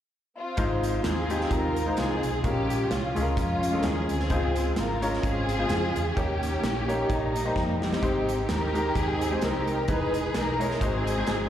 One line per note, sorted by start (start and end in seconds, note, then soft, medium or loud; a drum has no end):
0.38 1.04 C4 medium
0.38 1.01 F4 medium
0.57 0.97 G#1 medium
0.57 1.26 G#2 medium
0.57 1.08 G#3 medium
0.57 1.08 D#4 medium
0.57 1.08 F4 medium
0.57 1.08 C5 medium
0.57 kick loud
0.57 closed hi-hat medium
0.83 closed hi-hat medium
1.04 1.44 D#2 medium
1.04 1.94 C4 medium
1.04 1.51 F4 medium
1.04 1.51 G#4 medium
1.04 snare loud
1.04 closed hi-hat medium
1.30 1.71 G#3 medium
1.30 1.71 D#4 medium
1.30 1.72 F4 medium
1.30 1.72 G4 medium
1.30 closed hi-hat medium
1.41 snare soft
1.51 1.91 D#2 medium
1.51 2.41 D#4 medium
1.51 1.98 F4 medium
1.51 1.98 A#4 medium
1.51 kick loud
1.51 closed hi-hat medium
1.76 closed hi-hat medium
1.86 2.29 G#3 medium
1.86 2.29 D#4 medium
1.86 2.29 F4 medium
1.86 2.30 C5 medium
1.97 2.20 C2 medium
1.97 2.42 C4 medium
1.97 2.42 F4 medium
1.97 2.45 G#4 medium
1.97 snare loud
1.97 closed hi-hat medium
2.23 2.41 B1 medium
2.23 closed hi-hat medium
2.43 2.84 A#1 loud
2.43 3.12 A#2 medium
2.43 2.94 G#3 medium
2.43 2.94 C#4 medium
2.43 2.90 C#4 medium
2.43 2.95 F4 medium
2.43 2.87 G4 medium
2.43 2.95 A#4 medium
2.43 kick loud
2.43 closed hi-hat medium
2.70 closed hi-hat medium
2.90 3.12 C2 medium
2.90 3.36 G#3 medium
2.90 3.37 C#4 medium
2.90 3.36 F4 medium
2.90 snare medium
2.90 closed hi-hat medium
3.16 3.34 C#2 medium
3.16 3.57 G#3 medium
3.16 3.57 C#4 medium
3.16 3.58 F4 medium
3.16 3.22 G#4 medium
3.16 closed hi-hat medium
3.22 3.60 A#4 medium
3.37 3.77 F2 medium
3.37 4.27 G#3 medium
3.37 4.27 C#4 medium
3.37 3.81 F4 medium
3.37 kick loud
3.37 closed hi-hat medium
3.63 closed hi-hat medium
3.73 4.15 G#3 medium
3.73 4.15 C#4 medium
3.73 4.16 F4 medium
3.73 3.78 A4 medium
3.79 4.07 G#4 medium
3.79 4.19 A#4 medium
3.79 closed hi-hat medium
3.84 4.06 D#2 medium
3.84 snare loud
4.08 4.28 D2 medium
4.08 4.98 C4 medium
4.08 4.76 F4 medium
4.08 4.72 G#4 medium
4.08 closed hi-hat medium
4.20 snare soft
4.30 4.70 C#2 medium
4.30 4.98 C#3 medium
4.30 4.80 G#3 medium
4.30 4.81 C4 medium
4.30 4.36 D#4 medium
4.30 4.81 C5 medium
4.30 kick medium
4.30 closed hi-hat medium
4.36 4.83 F4 medium
4.56 closed hi-hat medium
4.76 5.17 G#1 medium
4.76 5.22 F4 medium
4.76 5.20 A#4 medium
4.76 snare medium
4.76 closed hi-hat medium
5.02 5.43 G#3 medium
5.02 5.44 C#4 medium
5.02 5.44 F4 medium
5.02 5.44 C#5 medium
5.02 closed hi-hat medium
5.13 snare soft
5.23 5.63 G#1 medium
5.23 6.13 C4 medium
5.23 6.13 F4 medium
5.23 6.16 G#4 loud
5.23 kick loud
5.23 closed hi-hat medium
5.49 closed hi-hat medium
5.59 6.01 C#3 medium
5.59 6.01 G#3 medium
5.59 6.02 F4 medium
5.59 6.02 C5 medium
5.69 5.92 F2 medium
5.69 snare loud
5.69 closed hi-hat medium
5.96 6.14 E2 medium
5.96 closed hi-hat medium
6.15 6.56 D#2 loud
6.15 6.85 D#3 medium
6.15 7.05 A#3 medium
6.15 6.67 A#3 medium
6.15 7.05 C#4 medium
6.15 6.67 D#4 medium
6.15 7.09 G4 medium
6.15 6.67 G4 medium
6.15 6.67 C#5 medium
6.15 kick loud
6.15 closed hi-hat medium
6.43 closed hi-hat medium
6.63 7.02 A#1 medium
6.63 snare loud
6.63 closed hi-hat medium
6.88 7.29 A#3 medium
6.88 7.30 D#4 medium
6.88 7.30 G4 medium
6.88 7.30 C#5 medium
6.88 closed hi-hat medium
7.10 7.49 A#1 medium
7.10 7.99 G3 medium
7.10 7.99 A#3 medium
7.10 7.80 D#4 medium
7.10 kick loud
7.10 closed hi-hat medium
7.36 closed hi-hat medium
7.45 7.87 A#3 medium
7.45 7.88 D#4 medium
7.45 7.88 G4 medium
7.45 7.88 C5 medium
7.56 7.96 F2 medium
7.56 kick medium
7.56 snare soft
7.82 8.71 C4 medium
7.82 8.48 D#4 medium
7.82 8.48 G4 medium
7.82 snare medium
7.93 snare medium
8.02 8.42 G#1 medium
8.02 8.71 G#2 medium
8.02 8.53 G#3 medium
8.02 8.53 D#4 medium
8.02 8.53 G4 medium
8.02 8.53 C5 medium
8.02 kick loud
8.02 closed hi-hat medium
8.29 closed hi-hat medium
8.49 8.89 D#2 medium
8.49 8.95 D#4 medium
8.49 9.38 G4 medium
8.49 8.96 A#4 medium
8.49 snare medium
8.49 closed hi-hat medium
8.74 9.16 G#3 medium
8.74 9.16 D#4 medium
8.74 9.16 G4 medium
8.74 9.16 A#4 medium
8.74 closed hi-hat medium
8.95 9.35 D#2 medium
8.95 9.85 C4 medium
8.95 9.41 D#4 medium
8.95 9.43 G#4 loud
8.95 kick loud
8.95 closed hi-hat medium
9.21 closed hi-hat medium
9.31 9.74 G#3 medium
9.31 9.74 D#4 medium
9.31 9.74 G4 medium
9.31 9.74 C5 medium
9.41 9.90 C2 medium
9.41 9.85 D#4 medium
9.41 9.85 G4 medium
9.41 9.89 A#4 medium
9.41 snare loud
9.41 closed hi-hat medium
9.67 closed hi-hat medium
9.88 10.28 E1 medium
9.88 10.57 E3 medium
9.88 10.39 G#3 medium
9.88 10.39 D#4 medium
9.88 10.34 D#4 medium
9.88 10.39 G#4 medium
9.88 10.78 G#4 medium
9.88 10.39 B4 medium
9.88 10.35 B4 medium
9.88 kick loud
9.88 closed hi-hat medium
10.14 closed hi-hat medium
10.34 10.75 B1 medium
10.34 10.79 D#4 medium
10.34 10.82 A#4 loud
10.34 snare medium
10.34 closed hi-hat medium
10.59 10.79 G#3 medium
10.59 10.79 D#4 medium
10.59 10.81 E4 medium
10.59 10.82 C#5 medium
10.59 closed hi-hat medium
10.71 snare soft
10.81 11.21 G#1 medium
10.81 11.49 G#2 medium
10.81 11.11 G#3 medium
10.81 11.49 C4 medium
10.81 11.11 D#4 medium
10.81 11.49 D#4 medium
10.81 11.11 F#4 medium
10.81 11.49 G#4 loud
10.81 11.12 C5 medium
10.81 kick loud
10.81 closed hi-hat medium
11.07 closed hi-hat medium
11.18 11.49 G#3 medium
11.18 11.49 D#4 medium
11.18 11.49 F#4 medium
11.18 11.49 C5 medium
11.27 11.49 G1 medium
11.27 snare loud
11.27 closed hi-hat medium